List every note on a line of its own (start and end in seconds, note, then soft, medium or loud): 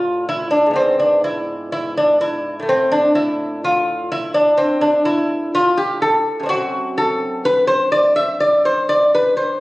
0.00 0.66 A2 medium
0.00 0.68 A3 soft
0.00 0.25 F4 medium
0.29 0.50 E4 medium
0.51 0.72 D4 medium
0.66 2.59 G#2 medium
0.71 2.61 B3 soft
0.71 0.98 D4 medium
0.76 0.99 C4 medium
1.00 1.24 D4 medium
1.24 1.70 E4 medium
1.72 1.96 E4 medium
1.97 2.20 D4 medium
2.21 2.66 E4 medium
2.60 6.42 A2 medium
2.60 6.43 A3 medium
2.69 2.92 C4 loud
2.92 3.15 D4 medium
3.15 3.61 E4 medium
3.64 4.09 F4 medium
4.12 4.34 E4 medium
4.34 4.58 D4 medium
4.58 4.82 C4 medium
4.81 5.05 D4 medium
5.05 5.51 E4 loud
5.55 5.78 F4 loud
5.77 6.01 G4 loud
6.02 6.48 A4 loud
6.40 9.60 F#2 medium
6.40 9.60 C4 medium
6.46 6.49 D4 medium
6.46 6.95 F#4 loud
6.98 7.44 A4 loud
7.45 7.67 B4 loud
7.67 7.91 C5 loud
7.92 8.15 D5 loud
8.16 8.40 E5 loud
8.40 8.65 D5 loud
8.65 8.89 C5 loud
8.89 9.13 D5 loud
9.15 9.36 B4 loud
9.37 9.60 C5 loud